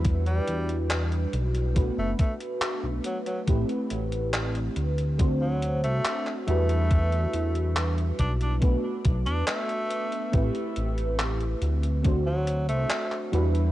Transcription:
<<
  \new Staff \with { instrumentName = "FM electric piano" } { \time 4/4 \key a \dorian \tempo 4 = 70 <g d' e' fis' b'>2 <a b d' fis' b'>2 | <a c' e' g' b'>2 <a c' d' fis' c''>4. <g d' e' fis' b'>8~ | <g d' e' fis' b'>2 <a b d' fis' b'>2 | <a c' e' g' b'>2 <a c' d' fis' c''>4. <g d' e' fis' b'>8 | }
  \new Staff \with { instrumentName = "Tenor saxophone" } { \time 4/4 \key a \dorian r16 g8 r4. a16 a16 r8. fis16 fis16 | r2 r16 fis8 a8 r16 a8~ | a4 r8 d'16 d'16 r8. d'16 a4 | r2 r16 fis8 a8 r8. | }
  \new Staff \with { instrumentName = "Analog synth bass" } { \clef bass \time 4/4 \key a \dorian e,8 e,4 b,,8. fis,,16 r8. b,,16 r8 | a,,16 r16 a,,4 d,4~ d,16 c,16 r8 e,8~ | e,8 e,4 b,,8. r16 b,,16 e,16 r4 | a,,16 r16 a,,4 d,4~ d,16 c,16 r8 e,8 | }
  \new DrumStaff \with { instrumentName = "Drums" } \drummode { \time 4/4 <hh bd>16 hh16 hh16 hh16 <hc hh>16 hh16 hh16 hh16 <hh bd>8 <hh bd>16 hh16 <hc hh>8 hh16 hh16 | <hh bd>16 hh16 hh16 hh16 <hc hh>16 hh16 hh16 hh16 <hh bd>8 hh16 hh16 <hc hh>16 hc16 hh16 hh16 | <hh bd>16 hh16 hh16 hh16 <hc hh>16 hh16 <hh bd>16 hh16 <hh bd>8 <hh bd>16 hh16 <hc hh>16 hh16 hh16 hh16 | <hh bd>16 hh16 hh16 hh16 <hc hh>16 hh16 hh16 hh16 <hh bd>8 hh16 hh16 <hc hh>16 hc16 hh16 hh16 | }
>>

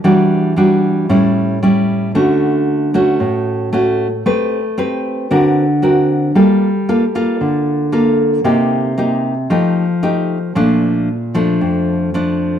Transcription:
\new Staff \with { instrumentName = "Nylon-string guitar" } { \time 4/4 \key bes \major \tempo 4 = 114 << { <g d' fis'>4 <g d' fis'>4 <g cis' e'>4 <g cis' e'>4 | <a cis' fis'>4. <a cis' fis'>4. <a cis' fis'>8 r8 | <c' g' b'>8 r8 <c' g' b'>4 <c' fis' bes'>8 r8 <c' fis' bes'>4 | <bes f' a'>8 r8 <bes f' a'>8 <bes f' a'>4. <bes f' a'>4 |
<bes ees' g'>4 <bes ees' g'>8 r8 <a ees' g'>8 r8 <a ees' g'>8 r8 | <f a d'>4 r8 <f a d'>4. <f a d'>4 | } \\ { e2 a,2 | d2 a,2 | a2 d2 | g2 d2 |
c2 f2 | bes,2 f,2 | } >> }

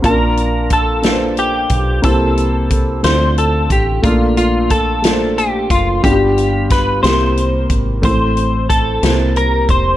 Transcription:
<<
  \new Staff \with { instrumentName = "Clean electric guitar" } { \time 6/8 \key bes \lydian \tempo 4. = 60 bes'4 a'4 g'4 | a'4. c''8 a'8 g'8 | f'8 f'8 a'4 g'8 f'8 | g'4 b'8 c''4 r8 |
c''4 a'4 bes'8 c''8 | }
  \new Staff \with { instrumentName = "Grand piano" } { \time 6/8 \key bes \lydian <bes c' d' f' bes' a''>4 r8 <bes d' f' a' b' c''>4 r8 | <bes c' e' g' c''>4 r8 <a c' d' e' f' a'>4 r8 | <a bes d' f' a'>4 r8 <a bes d' f' bes' c''>4 r8 | <g b d' f' ges' g'>4 r8 <bes c' e' g' bes'>4 r8 |
<a c' e' a' c''>4 r8 <bes c' e' g' c''>4 r8 | }
  \new Staff \with { instrumentName = "Grand piano" } { \clef bass \time 6/8 \key bes \lydian bes,4. r4. | c4. d4. | bes,4. r4. | g,4. c4. |
a,4. c4. | }
  \new Staff \with { instrumentName = "Fingered electric bass" } { \clef bass \time 6/8 \key bes \lydian bes,,2~ bes,,8 b,,8 | c,4. d,4 a,,8 | bes,,2~ bes,,8 ges,,8 | g,,4. c,4 aes,,8 |
a,,4. c,4 e,,8 | }
  \new DrumStaff \with { instrumentName = "Drums" } \drummode { \time 6/8 <hh bd>8 hh8 <hh bd>8 <hh sn>8 hh8 <hh bd>8 | <hh bd>8 hh8 <hh bd>8 <hh sn>8 hh8 <hh bd>8 | <hh bd>8 hh8 <hh bd>8 <hh sn>8 hh8 <hh bd>8 | <hh bd>8 hh8 <hh bd sn>8 <hh sn>8 hh8 <hh bd>8 |
<hh bd>8 hh8 <hh bd>8 <hh sn>8 hh8 <hh bd>8 | }
>>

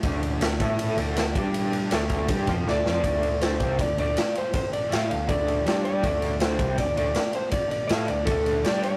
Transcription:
<<
  \new Staff \with { instrumentName = "Electric slide guitar" } { \time 4/4 \key d \minor \tempo 4 = 160 r1 | r2. d''8 d''8~ | d''4 c''4 d''8 d''4 c''8 | c''8 d''8 f''8 f''8 d''4 d''8 d''8~ |
d''4 c''4 d''8 d''4 c''8 | d''8 d''8 f''8 d''8 a'4 d''8 d''8 | }
  \new Staff \with { instrumentName = "Overdriven electric guitar" } { \time 4/4 \key d \minor <d a d'>4 <d a>8 <a e' a'>4 <d a d'>4 <g d' g'>8~ | <g d' g'>4 <d a d'>4 <g d' g'>8 <f c' f'>8 <d a d'>8 <f c' f'>8 | <d a d'>4. <c g c'>8 <d a>8 <d a d'>8 r4 | r4 <a e' a'>8 <d a>8 <d a d'>4 <g d' g'>4 |
<d a d'>4. <c g c'>8 <d a>8 <d a d'>8 r4 | r4 <a e' a'>8 <d a>8 <d a d'>4 <g d' g'>4 | }
  \new Staff \with { instrumentName = "Fingered electric bass" } { \clef bass \time 4/4 \key d \minor d,4 d,8 a,4 d,4 g,8~ | g,4 d,4 g,8 f,8 d,8 f,8 | d,4. c,8 d,8 d,8 r4 | r4 a,8 d,8 d,4 g,4 |
d,4. c,8 d,8 d,8 r4 | r4 a,8 d,8 d,4 g,4 | }
  \new DrumStaff \with { instrumentName = "Drums" } \drummode { \time 4/4 <bd cymr>8 cymr8 <cymr sn>8 <bd cymr>8 cymr8 cymr8 <cymr sn>8 <bd cymr>8 | cymr8 cymr8 <cymr sn>8 <bd cymr>8 <bd cymr>8 <bd cymr sn>8 sn8 sn8 | <bd cymr>8 cymr8 <cymr sn>8 <bd cymr>8 <bd cymr>8 cymr8 <cymr sn>8 cymr8 | <bd cymr>8 cymr8 <cymr sn>8 cymr8 <bd cymr>8 cymr8 <cymr sn>8 cymr8 |
<bd cymr>8 cymr8 <cymr sn>8 <bd cymr>8 <bd cymr>8 cymr8 <cymr sn>8 cymr8 | <bd cymr>8 cymr8 <cymr sn>8 cymr8 <bd cymr>8 cymr8 <cymr sn>8 cymr8 | }
>>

